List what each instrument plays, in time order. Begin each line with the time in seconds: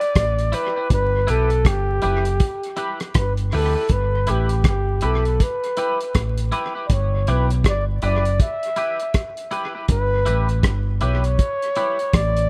Already playing: flugelhorn D5
0.01 muted clean electric guitar stroke, closed hi-hat
0.15 fingered electric bass A1, kick, cross-stick, closed hi-hat
0.39 closed hi-hat
0.52 clean electric guitar E4 G4 B4, flugelhorn B4, closed hi-hat
0.76 clean electric guitar E4 G4 B4
0.90 fingered electric bass G1, flugelhorn B4, kick, closed hi-hat
1.27 fingered electric bass B1, clean electric guitar E4 G4 B4, flugelhorn A4, closed hi-hat
1.50 closed hi-hat
1.65 fingered electric bass G1, flugelhorn G4, kick, cross-stick, closed hi-hat
2.02 fingered electric bass F#1, clean electric guitar E4 G4 B4, closed hi-hat
2.25 closed hi-hat
2.40 kick, closed hi-hat
2.63 closed hi-hat
2.77 clean electric guitar E4 G4 B4, closed hi-hat
3.00 cross-stick, closed hi-hat
3.14 fingered electric bass G1, flugelhorn B4, kick, cross-stick, closed hi-hat
3.37 closed hi-hat
3.52 fingered electric bass D2, clean electric guitar E4 G4 B4, flugelhorn A4, open hi-hat
3.75 clean electric guitar E4 G4 B4
3.89 fingered electric bass G1, flugelhorn B4, kick, closed hi-hat
4.27 fingered electric bass A1, clean electric guitar E4 G4 B4, flugelhorn G4, closed hi-hat
4.49 closed hi-hat
4.64 fingered electric bass G1, kick, cross-stick, closed hi-hat
4.68 flugelhorn G4
5.01 fingered electric bass B1, clean electric guitar E4 G4 B4, closed hi-hat
5.05 flugelhorn A4
5.25 closed hi-hat
5.40 flugelhorn B4, kick, closed hi-hat
5.64 closed hi-hat
5.77 clean electric guitar E4 G4 B4, closed hi-hat
6.01 closed hi-hat
6.15 fingered electric bass A1, kick, cross-stick, closed hi-hat
6.38 closed hi-hat
6.52 clean electric guitar E4 G4 B4, closed hi-hat
6.74 clean electric guitar E4 G4 B4
6.86 fingered electric bass G1, flugelhorn D5, kick, closed hi-hat
6.92 flugelhorn C#5
7.27 fingered electric bass B1, clean electric guitar E4 G4 B4, flugelhorn B4, closed hi-hat
7.50 closed hi-hat
7.64 fingered electric bass G1, kick, cross-stick, closed hi-hat
7.68 flugelhorn D5
8.02 fingered electric bass F#1, clean electric guitar E4 G4 B4, flugelhorn D5, closed hi-hat
8.25 closed hi-hat
8.40 flugelhorn E5, kick, closed hi-hat
8.63 closed hi-hat
8.76 clean electric guitar E4 G4 B4, closed hi-hat
9.00 closed hi-hat
9.14 kick, cross-stick, closed hi-hat
9.37 closed hi-hat
9.51 clean electric guitar E4 G4 B4, closed hi-hat
9.75 clean electric guitar E4 G4 B4
9.88 fingered electric bass G1, flugelhorn B4, kick, closed hi-hat
10.26 fingered electric bass A1, clean electric guitar E4 G4 B4, closed hi-hat
10.49 closed hi-hat
10.63 fingered electric bass G1, kick, cross-stick, closed hi-hat
11.01 fingered electric bass B1, clean electric guitar E4 G4 B4, flugelhorn C#5, closed hi-hat
11.24 closed hi-hat
11.39 kick, closed hi-hat
11.62 closed hi-hat
11.76 clean electric guitar E4 G4 B4, closed hi-hat
11.99 closed hi-hat
12.13 fingered electric bass A1, flugelhorn D5, kick, cross-stick, closed hi-hat
12.37 closed hi-hat